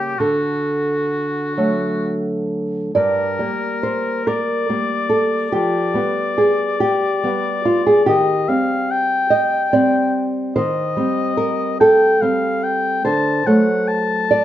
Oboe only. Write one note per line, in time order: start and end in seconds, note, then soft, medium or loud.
0.00 0.21 G4 medium
0.19 2.25 F#4 medium
2.96 4.29 A#4 medium
4.28 5.54 D5 medium
5.55 8.04 D5 medium
8.08 8.50 D#5 medium
8.48 8.92 F5 medium
8.91 10.31 G5 medium
10.56 11.76 D#5 medium
11.80 12.23 G5 medium
12.21 12.65 F5 medium
12.63 13.04 G5 medium
13.05 13.48 A5 medium
13.47 13.89 F#5 medium
13.88 14.45 A5 medium